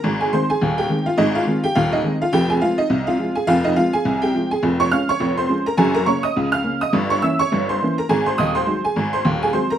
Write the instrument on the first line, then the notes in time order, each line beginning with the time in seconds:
honky-tonk piano
0.04 G#1 G#2
0.21 G#4 G#5
0.33 D#3 G#3 C4 C5 C6
0.50 G#4 G#5
0.61 D#1 D#2
0.78 G4 G5
0.90 D#3 G#3 C4
1.06 F4 F5
1.18 G#1 G#2 D#4 D#5
1.35 F4 F5
1.47 D#3 G#3 C4
1.64 G4 G5
1.75 D#1 D#2 F4 F5
1.93 D#4 D#5
2.04 D#3 G#3 C4
2.22 F4 F5
2.33 F1 F2 G4 G5
2.50 G#4 G#5
2.61 F3 G#3 C4 F4 F5
2.78 D#4 D#5
2.90 C2 C3
3.07 F4 F5
3.19 F3 G#3 C4
3.35 G#4 G#5
3.47 F1 F2 F4 F5
3.64 D#4 D#5
3.76 F3 G#3 C4 F4 F5
3.93 G#4 G#5
4.05 C2 C3
4.22 G4 G5
4.35 F3 G#3 C4
4.51 G#4 G#5
4.63 F1 F2
4.80 C#5 C#6
4.92 F3 G#3 C#4 F5 F6
5.09 C#5 C#6
5.20 F1 F2
5.38 C5 C6
5.49 F3 G#3 C#4
5.66 A#4 A#5
5.77 F#1 F#2 G#4 G#5
5.94 A#4 A#5
6.06 C#3 A#3 C#4 C#5 C#6
6.23 D#5 D#6
6.36 C#2 C#3
6.52 F5 F6
6.64 C#3 A#3 C#4
6.81 D#5 D#6
6.93 G1 G2
7.10 C#5 C#6
7.22 E3 A#3 C#4 E5 E6
7.39 C#5 C#6
7.52 G1 G2
7.69 C5 C6
7.82 E3 A#3 C#4
7.98 A#4 A#5
8.09 G#1 G#2 G#4 G#5
8.26 C5 C6
8.38 D#1 D#2 D#5 D#6
8.55 C5 C6
8.67 F#3 G#3 D#4
8.85 G#4 G#5
8.96 G#1 G#2
9.13 C5 C6
9.25 D#1 D#2
9.43 G#4 G#5
9.53 F#3 G#3 C4 C5 C6
9.70 A#4 A#5